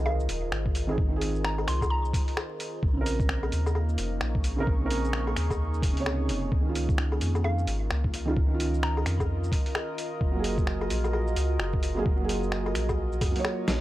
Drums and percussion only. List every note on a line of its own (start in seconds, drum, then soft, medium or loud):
0.06 low woodblock medium
0.20 shaker soft
0.29 open hi-hat medium
0.29 shaker medium
0.52 finger snap loud
0.66 kick loud
0.75 open hi-hat medium
0.75 shaker medium
0.89 low woodblock soft
0.98 kick loud
1.21 open hi-hat medium
1.21 shaker medium
1.35 shaker soft
1.45 finger snap loud
1.58 low woodblock medium
1.68 finger snap medium
1.68 open hi-hat medium
1.68 shaker medium
1.81 kick medium
1.81 low woodblock medium
1.81 shaker soft
2.05 shaker soft
2.13 kick loud
2.13 open hi-hat medium
2.13 shaker medium
2.28 open hi-hat soft
2.37 finger snap loud
2.37 low woodblock medium
2.60 open hi-hat medium
2.60 shaker medium
2.83 kick loud
3.06 open hi-hat medium
3.06 shaker medium
3.20 kick loud
3.20 shaker soft
3.29 finger snap loud
3.43 low woodblock medium
3.52 open hi-hat medium
3.52 shaker medium
3.66 low woodblock medium
3.66 shaker soft
3.75 low woodblock medium
3.89 shaker soft
3.98 open hi-hat medium
3.98 shaker medium
4.21 finger snap loud
4.35 kick loud
4.44 open hi-hat medium
4.44 shaker medium
4.58 low woodblock soft
4.67 kick loud
4.90 open hi-hat medium
4.90 shaker medium
5.04 shaker soft
5.13 finger snap loud
5.27 low woodblock medium
5.37 finger snap medium
5.37 open hi-hat medium
5.37 shaker medium
5.50 kick medium
5.50 low woodblock medium
5.50 shaker soft
5.74 shaker soft
5.83 kick loud
5.83 open hi-hat medium
5.83 shaker medium
5.97 open hi-hat soft
6.06 finger snap loud
6.06 low woodblock medium
6.29 open hi-hat medium
6.29 shaker medium
6.52 kick loud
6.75 open hi-hat medium
6.75 shaker medium
6.89 kick loud
6.89 shaker soft
6.98 finger snap loud
7.12 low woodblock medium
7.21 open hi-hat medium
7.21 shaker medium
7.35 low woodblock medium
7.35 shaker soft
7.45 low woodblock medium
7.59 shaker soft
7.67 open hi-hat medium
7.67 shaker medium
7.90 finger snap loud
8.04 kick loud
8.14 open hi-hat medium
8.14 shaker medium
8.28 low woodblock soft
8.36 kick loud
8.60 open hi-hat medium
8.60 shaker medium
8.74 shaker soft
8.83 finger snap loud
8.97 low woodblock medium
9.06 finger snap medium
9.06 open hi-hat medium
9.06 shaker medium
9.20 kick medium
9.20 low woodblock medium
9.20 shaker soft
9.44 shaker soft
9.52 kick loud
9.52 open hi-hat medium
9.52 shaker medium
9.66 open hi-hat soft
9.75 finger snap loud
9.75 low woodblock medium
9.98 open hi-hat medium
9.98 shaker medium
10.21 kick loud
10.44 open hi-hat medium
10.44 shaker medium
10.58 kick loud
10.58 shaker soft
10.67 finger snap loud
10.81 low woodblock medium
10.90 open hi-hat medium
10.90 shaker medium
11.04 low woodblock medium
11.04 shaker soft
11.13 low woodblock medium
11.27 shaker soft
11.36 open hi-hat medium
11.36 shaker medium
11.59 finger snap medium
11.74 kick loud
11.83 open hi-hat medium
11.83 shaker medium
11.97 low woodblock soft
12.06 kick loud
12.29 open hi-hat medium
12.29 shaker medium
12.43 shaker soft
12.52 finger snap loud
12.66 low woodblock medium
12.75 finger snap medium
12.75 open hi-hat medium
12.75 shaker medium
12.89 kick medium
12.89 low woodblock medium
12.89 shaker soft
13.12 shaker soft
13.21 kick loud
13.21 open hi-hat medium
13.21 low woodblock soft
13.21 shaker medium
13.36 open hi-hat soft
13.45 finger snap loud
13.45 low woodblock medium
13.68 snare medium
13.68 open hi-hat medium
13.68 shaker medium